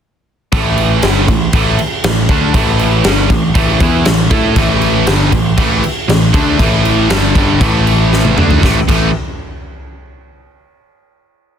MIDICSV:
0, 0, Header, 1, 4, 480
1, 0, Start_track
1, 0, Tempo, 507185
1, 494, Time_signature, 4, 2, 24, 8
1, 10968, End_track
2, 0, Start_track
2, 0, Title_t, "Overdriven electric guitar"
2, 0, Program_c, 0, 29
2, 495, Note_on_c, 0, 45, 94
2, 500, Note_on_c, 0, 52, 94
2, 507, Note_on_c, 0, 57, 97
2, 964, Note_off_c, 0, 45, 0
2, 967, Note_off_c, 0, 52, 0
2, 971, Note_off_c, 0, 57, 0
2, 977, Note_on_c, 0, 43, 88
2, 981, Note_on_c, 0, 50, 92
2, 990, Note_on_c, 0, 55, 98
2, 1205, Note_off_c, 0, 43, 0
2, 1208, Note_off_c, 0, 50, 0
2, 1212, Note_off_c, 0, 55, 0
2, 1218, Note_on_c, 0, 45, 63
2, 1220, Note_on_c, 0, 52, 66
2, 1405, Note_off_c, 0, 45, 0
2, 1406, Note_off_c, 0, 52, 0
2, 1455, Note_on_c, 0, 45, 94
2, 1461, Note_on_c, 0, 52, 92
2, 1468, Note_on_c, 0, 57, 100
2, 1683, Note_off_c, 0, 45, 0
2, 1686, Note_off_c, 0, 52, 0
2, 1690, Note_off_c, 0, 57, 0
2, 1933, Note_on_c, 0, 45, 63
2, 1938, Note_on_c, 0, 52, 73
2, 2121, Note_off_c, 0, 45, 0
2, 2123, Note_off_c, 0, 52, 0
2, 2165, Note_on_c, 0, 50, 86
2, 2174, Note_on_c, 0, 57, 94
2, 2177, Note_on_c, 0, 62, 101
2, 2397, Note_off_c, 0, 50, 0
2, 2401, Note_off_c, 0, 57, 0
2, 2401, Note_on_c, 0, 45, 98
2, 2403, Note_off_c, 0, 62, 0
2, 2410, Note_on_c, 0, 52, 100
2, 2416, Note_on_c, 0, 57, 97
2, 2874, Note_off_c, 0, 45, 0
2, 2878, Note_off_c, 0, 52, 0
2, 2879, Note_on_c, 0, 43, 90
2, 2881, Note_off_c, 0, 57, 0
2, 2881, Note_on_c, 0, 50, 90
2, 2889, Note_on_c, 0, 55, 101
2, 3113, Note_off_c, 0, 43, 0
2, 3114, Note_off_c, 0, 50, 0
2, 3118, Note_off_c, 0, 55, 0
2, 3125, Note_on_c, 0, 45, 64
2, 3130, Note_on_c, 0, 52, 69
2, 3315, Note_off_c, 0, 45, 0
2, 3317, Note_off_c, 0, 52, 0
2, 3359, Note_on_c, 0, 45, 92
2, 3366, Note_on_c, 0, 52, 94
2, 3372, Note_on_c, 0, 57, 100
2, 3580, Note_off_c, 0, 52, 0
2, 3588, Note_off_c, 0, 45, 0
2, 3591, Note_on_c, 0, 52, 87
2, 3599, Note_off_c, 0, 57, 0
2, 3604, Note_on_c, 0, 59, 96
2, 3609, Note_on_c, 0, 64, 98
2, 3829, Note_off_c, 0, 52, 0
2, 3835, Note_off_c, 0, 59, 0
2, 3837, Note_off_c, 0, 64, 0
2, 3843, Note_on_c, 0, 45, 68
2, 3848, Note_on_c, 0, 52, 77
2, 4033, Note_off_c, 0, 45, 0
2, 4036, Note_off_c, 0, 52, 0
2, 4069, Note_on_c, 0, 57, 91
2, 4076, Note_on_c, 0, 64, 94
2, 4082, Note_on_c, 0, 69, 95
2, 4307, Note_off_c, 0, 57, 0
2, 4311, Note_off_c, 0, 64, 0
2, 4311, Note_on_c, 0, 45, 94
2, 4314, Note_off_c, 0, 69, 0
2, 4321, Note_on_c, 0, 52, 108
2, 4327, Note_on_c, 0, 57, 106
2, 4789, Note_off_c, 0, 45, 0
2, 4792, Note_on_c, 0, 43, 89
2, 4794, Note_off_c, 0, 52, 0
2, 4797, Note_off_c, 0, 57, 0
2, 4800, Note_on_c, 0, 50, 96
2, 4803, Note_on_c, 0, 55, 100
2, 5029, Note_off_c, 0, 43, 0
2, 5033, Note_off_c, 0, 50, 0
2, 5034, Note_off_c, 0, 55, 0
2, 5037, Note_on_c, 0, 45, 58
2, 5037, Note_on_c, 0, 52, 68
2, 5231, Note_off_c, 0, 45, 0
2, 5231, Note_off_c, 0, 52, 0
2, 5268, Note_on_c, 0, 45, 92
2, 5278, Note_on_c, 0, 52, 95
2, 5281, Note_on_c, 0, 57, 100
2, 5508, Note_off_c, 0, 45, 0
2, 5513, Note_off_c, 0, 52, 0
2, 5514, Note_off_c, 0, 57, 0
2, 5763, Note_on_c, 0, 45, 61
2, 5766, Note_on_c, 0, 52, 75
2, 5955, Note_off_c, 0, 45, 0
2, 5957, Note_off_c, 0, 52, 0
2, 5996, Note_on_c, 0, 50, 85
2, 6003, Note_on_c, 0, 57, 92
2, 6012, Note_on_c, 0, 62, 102
2, 6223, Note_off_c, 0, 50, 0
2, 6227, Note_on_c, 0, 45, 98
2, 6230, Note_off_c, 0, 57, 0
2, 6235, Note_on_c, 0, 52, 106
2, 6238, Note_off_c, 0, 62, 0
2, 6242, Note_on_c, 0, 57, 114
2, 6709, Note_off_c, 0, 45, 0
2, 6712, Note_on_c, 0, 43, 93
2, 6714, Note_off_c, 0, 52, 0
2, 6717, Note_off_c, 0, 57, 0
2, 6718, Note_on_c, 0, 50, 95
2, 6727, Note_on_c, 0, 55, 102
2, 6946, Note_off_c, 0, 43, 0
2, 6952, Note_off_c, 0, 50, 0
2, 6957, Note_on_c, 0, 43, 80
2, 6959, Note_off_c, 0, 55, 0
2, 6963, Note_on_c, 0, 50, 85
2, 6970, Note_on_c, 0, 55, 96
2, 7195, Note_off_c, 0, 43, 0
2, 7195, Note_off_c, 0, 50, 0
2, 7199, Note_on_c, 0, 45, 92
2, 7200, Note_off_c, 0, 55, 0
2, 7203, Note_on_c, 0, 52, 97
2, 7210, Note_on_c, 0, 57, 107
2, 7912, Note_off_c, 0, 45, 0
2, 7913, Note_off_c, 0, 57, 0
2, 7916, Note_on_c, 0, 50, 83
2, 7920, Note_off_c, 0, 52, 0
2, 7925, Note_on_c, 0, 57, 86
2, 7930, Note_on_c, 0, 62, 97
2, 8156, Note_off_c, 0, 50, 0
2, 8161, Note_off_c, 0, 57, 0
2, 8162, Note_on_c, 0, 45, 96
2, 8163, Note_off_c, 0, 62, 0
2, 8170, Note_on_c, 0, 52, 95
2, 8180, Note_on_c, 0, 57, 108
2, 8311, Note_off_c, 0, 45, 0
2, 8315, Note_off_c, 0, 52, 0
2, 8319, Note_off_c, 0, 57, 0
2, 8406, Note_on_c, 0, 45, 99
2, 8415, Note_on_c, 0, 52, 89
2, 8421, Note_on_c, 0, 57, 108
2, 8601, Note_off_c, 0, 45, 0
2, 8605, Note_off_c, 0, 52, 0
2, 8608, Note_off_c, 0, 57, 0
2, 10968, End_track
3, 0, Start_track
3, 0, Title_t, "Picked electric bass"
3, 0, Program_c, 1, 34
3, 496, Note_on_c, 1, 33, 94
3, 939, Note_off_c, 1, 33, 0
3, 972, Note_on_c, 1, 31, 89
3, 1194, Note_off_c, 1, 31, 0
3, 1216, Note_on_c, 1, 33, 75
3, 1435, Note_off_c, 1, 33, 0
3, 1450, Note_on_c, 1, 33, 87
3, 1672, Note_off_c, 1, 33, 0
3, 1932, Note_on_c, 1, 33, 79
3, 2152, Note_off_c, 1, 33, 0
3, 2168, Note_on_c, 1, 38, 101
3, 2389, Note_off_c, 1, 38, 0
3, 2405, Note_on_c, 1, 33, 91
3, 2849, Note_off_c, 1, 33, 0
3, 2888, Note_on_c, 1, 31, 99
3, 3108, Note_off_c, 1, 31, 0
3, 3122, Note_on_c, 1, 33, 82
3, 3345, Note_off_c, 1, 33, 0
3, 3362, Note_on_c, 1, 33, 93
3, 3585, Note_off_c, 1, 33, 0
3, 3599, Note_on_c, 1, 40, 93
3, 3823, Note_off_c, 1, 40, 0
3, 3844, Note_on_c, 1, 33, 85
3, 4066, Note_off_c, 1, 33, 0
3, 4077, Note_on_c, 1, 45, 101
3, 4301, Note_off_c, 1, 45, 0
3, 4318, Note_on_c, 1, 33, 99
3, 4766, Note_off_c, 1, 33, 0
3, 4796, Note_on_c, 1, 31, 91
3, 5021, Note_off_c, 1, 31, 0
3, 5038, Note_on_c, 1, 33, 77
3, 5263, Note_off_c, 1, 33, 0
3, 5276, Note_on_c, 1, 33, 99
3, 5502, Note_off_c, 1, 33, 0
3, 5763, Note_on_c, 1, 33, 83
3, 5986, Note_off_c, 1, 33, 0
3, 5999, Note_on_c, 1, 38, 98
3, 6225, Note_off_c, 1, 38, 0
3, 6239, Note_on_c, 1, 33, 94
3, 6689, Note_off_c, 1, 33, 0
3, 6724, Note_on_c, 1, 31, 90
3, 6948, Note_off_c, 1, 31, 0
3, 6961, Note_on_c, 1, 31, 97
3, 7187, Note_off_c, 1, 31, 0
3, 7201, Note_on_c, 1, 33, 99
3, 7888, Note_off_c, 1, 33, 0
3, 7918, Note_on_c, 1, 38, 96
3, 8147, Note_off_c, 1, 38, 0
3, 8169, Note_on_c, 1, 33, 91
3, 8304, Note_off_c, 1, 33, 0
3, 8412, Note_on_c, 1, 33, 91
3, 8636, Note_off_c, 1, 33, 0
3, 10968, End_track
4, 0, Start_track
4, 0, Title_t, "Drums"
4, 497, Note_on_c, 9, 36, 108
4, 497, Note_on_c, 9, 49, 77
4, 592, Note_off_c, 9, 36, 0
4, 592, Note_off_c, 9, 49, 0
4, 734, Note_on_c, 9, 49, 57
4, 828, Note_off_c, 9, 49, 0
4, 969, Note_on_c, 9, 49, 77
4, 976, Note_on_c, 9, 38, 104
4, 1064, Note_off_c, 9, 49, 0
4, 1070, Note_off_c, 9, 38, 0
4, 1213, Note_on_c, 9, 49, 60
4, 1214, Note_on_c, 9, 36, 80
4, 1308, Note_off_c, 9, 36, 0
4, 1308, Note_off_c, 9, 49, 0
4, 1446, Note_on_c, 9, 49, 87
4, 1451, Note_on_c, 9, 36, 111
4, 1541, Note_off_c, 9, 49, 0
4, 1546, Note_off_c, 9, 36, 0
4, 1690, Note_on_c, 9, 49, 64
4, 1785, Note_off_c, 9, 49, 0
4, 1928, Note_on_c, 9, 49, 83
4, 1935, Note_on_c, 9, 38, 119
4, 2023, Note_off_c, 9, 49, 0
4, 2029, Note_off_c, 9, 38, 0
4, 2164, Note_on_c, 9, 49, 60
4, 2167, Note_on_c, 9, 36, 101
4, 2259, Note_off_c, 9, 49, 0
4, 2262, Note_off_c, 9, 36, 0
4, 2404, Note_on_c, 9, 49, 82
4, 2406, Note_on_c, 9, 36, 103
4, 2499, Note_off_c, 9, 49, 0
4, 2501, Note_off_c, 9, 36, 0
4, 2643, Note_on_c, 9, 49, 56
4, 2738, Note_off_c, 9, 49, 0
4, 2878, Note_on_c, 9, 49, 72
4, 2885, Note_on_c, 9, 38, 109
4, 2973, Note_off_c, 9, 49, 0
4, 2979, Note_off_c, 9, 38, 0
4, 3122, Note_on_c, 9, 49, 57
4, 3123, Note_on_c, 9, 36, 86
4, 3216, Note_off_c, 9, 49, 0
4, 3218, Note_off_c, 9, 36, 0
4, 3359, Note_on_c, 9, 49, 79
4, 3362, Note_on_c, 9, 36, 107
4, 3454, Note_off_c, 9, 49, 0
4, 3456, Note_off_c, 9, 36, 0
4, 3599, Note_on_c, 9, 49, 58
4, 3600, Note_on_c, 9, 36, 105
4, 3694, Note_off_c, 9, 49, 0
4, 3695, Note_off_c, 9, 36, 0
4, 3836, Note_on_c, 9, 49, 82
4, 3842, Note_on_c, 9, 38, 112
4, 3930, Note_off_c, 9, 49, 0
4, 3937, Note_off_c, 9, 38, 0
4, 4078, Note_on_c, 9, 36, 104
4, 4078, Note_on_c, 9, 49, 58
4, 4172, Note_off_c, 9, 36, 0
4, 4173, Note_off_c, 9, 49, 0
4, 4315, Note_on_c, 9, 49, 78
4, 4317, Note_on_c, 9, 36, 107
4, 4410, Note_off_c, 9, 49, 0
4, 4411, Note_off_c, 9, 36, 0
4, 4557, Note_on_c, 9, 49, 54
4, 4652, Note_off_c, 9, 49, 0
4, 4795, Note_on_c, 9, 49, 82
4, 4802, Note_on_c, 9, 38, 110
4, 4890, Note_off_c, 9, 49, 0
4, 4897, Note_off_c, 9, 38, 0
4, 5038, Note_on_c, 9, 36, 81
4, 5038, Note_on_c, 9, 49, 59
4, 5132, Note_off_c, 9, 36, 0
4, 5132, Note_off_c, 9, 49, 0
4, 5279, Note_on_c, 9, 36, 109
4, 5279, Note_on_c, 9, 49, 88
4, 5373, Note_off_c, 9, 36, 0
4, 5374, Note_off_c, 9, 49, 0
4, 5523, Note_on_c, 9, 49, 60
4, 5617, Note_off_c, 9, 49, 0
4, 5767, Note_on_c, 9, 49, 90
4, 5773, Note_on_c, 9, 38, 109
4, 5861, Note_off_c, 9, 49, 0
4, 5868, Note_off_c, 9, 38, 0
4, 6000, Note_on_c, 9, 36, 109
4, 6005, Note_on_c, 9, 49, 65
4, 6095, Note_off_c, 9, 36, 0
4, 6100, Note_off_c, 9, 49, 0
4, 6241, Note_on_c, 9, 36, 99
4, 6244, Note_on_c, 9, 49, 87
4, 6335, Note_off_c, 9, 36, 0
4, 6339, Note_off_c, 9, 49, 0
4, 6484, Note_on_c, 9, 49, 56
4, 6579, Note_off_c, 9, 49, 0
4, 6720, Note_on_c, 9, 49, 79
4, 6727, Note_on_c, 9, 38, 103
4, 6815, Note_off_c, 9, 49, 0
4, 6821, Note_off_c, 9, 38, 0
4, 6960, Note_on_c, 9, 36, 93
4, 6963, Note_on_c, 9, 49, 53
4, 7055, Note_off_c, 9, 36, 0
4, 7057, Note_off_c, 9, 49, 0
4, 7201, Note_on_c, 9, 36, 111
4, 7202, Note_on_c, 9, 49, 85
4, 7296, Note_off_c, 9, 36, 0
4, 7297, Note_off_c, 9, 49, 0
4, 7447, Note_on_c, 9, 49, 56
4, 7542, Note_off_c, 9, 49, 0
4, 7693, Note_on_c, 9, 38, 66
4, 7788, Note_off_c, 9, 38, 0
4, 7806, Note_on_c, 9, 48, 66
4, 7900, Note_off_c, 9, 48, 0
4, 7928, Note_on_c, 9, 45, 87
4, 8023, Note_off_c, 9, 45, 0
4, 8050, Note_on_c, 9, 43, 89
4, 8145, Note_off_c, 9, 43, 0
4, 8169, Note_on_c, 9, 36, 103
4, 8179, Note_on_c, 9, 38, 85
4, 8264, Note_off_c, 9, 36, 0
4, 8273, Note_off_c, 9, 38, 0
4, 8410, Note_on_c, 9, 36, 101
4, 8414, Note_on_c, 9, 57, 78
4, 8505, Note_off_c, 9, 36, 0
4, 8509, Note_off_c, 9, 57, 0
4, 10968, End_track
0, 0, End_of_file